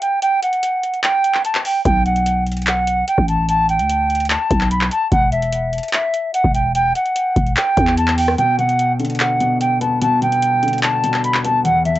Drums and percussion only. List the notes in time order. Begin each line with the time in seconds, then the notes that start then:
0.02 closed hi-hat
0.22 closed hi-hat
0.42 closed hi-hat
0.53 closed hi-hat
0.63 closed hi-hat
0.83 closed hi-hat
0.94 closed hi-hat
1.04 clap, closed hi-hat
1.24 closed hi-hat
1.34 clap
1.45 closed hi-hat
1.55 clap
1.65 open hi-hat
1.85 kick, closed hi-hat
2.06 closed hi-hat
2.16 closed hi-hat
2.26 closed hi-hat
2.47 closed hi-hat
2.52 closed hi-hat
2.57 closed hi-hat
2.62 closed hi-hat
2.67 clap, closed hi-hat
2.87 closed hi-hat
3.08 closed hi-hat
3.18 kick
3.28 closed hi-hat
3.49 closed hi-hat
3.69 closed hi-hat
3.79 closed hi-hat
3.89 closed hi-hat
4.10 closed hi-hat
4.15 closed hi-hat
4.20 closed hi-hat
4.25 closed hi-hat
4.30 clap, closed hi-hat
4.51 kick, closed hi-hat
4.61 clap
4.71 closed hi-hat
4.81 clap
4.91 closed hi-hat
5.12 kick, closed hi-hat
5.32 closed hi-hat
5.42 closed hi-hat
5.53 closed hi-hat
5.73 closed hi-hat
5.78 closed hi-hat
5.83 closed hi-hat
5.88 closed hi-hat
5.93 clap, closed hi-hat
6.14 closed hi-hat
6.34 closed hi-hat
6.44 kick
6.55 closed hi-hat
6.75 closed hi-hat
6.95 closed hi-hat
7.06 closed hi-hat
7.16 closed hi-hat
7.36 kick, closed hi-hat
7.47 closed hi-hat
7.57 clap, closed hi-hat
7.77 kick, closed hi-hat
7.87 clap
7.97 closed hi-hat
8.08 clap
8.18 open hi-hat
8.28 cross-stick
8.38 closed hi-hat
8.59 closed hi-hat
8.69 closed hi-hat
8.79 closed hi-hat
9.00 closed hi-hat
9.05 closed hi-hat
9.10 closed hi-hat
9.15 closed hi-hat
9.20 clap, closed hi-hat
9.40 closed hi-hat
9.61 closed hi-hat
9.81 closed hi-hat
10.02 closed hi-hat
10.22 closed hi-hat
10.32 closed hi-hat
10.42 closed hi-hat
10.63 closed hi-hat
10.68 closed hi-hat
10.73 closed hi-hat
10.78 closed hi-hat
10.83 clap, closed hi-hat
11.04 closed hi-hat
11.14 clap
11.24 closed hi-hat
11.34 clap
11.45 closed hi-hat
11.65 closed hi-hat
11.85 closed hi-hat
11.95 closed hi-hat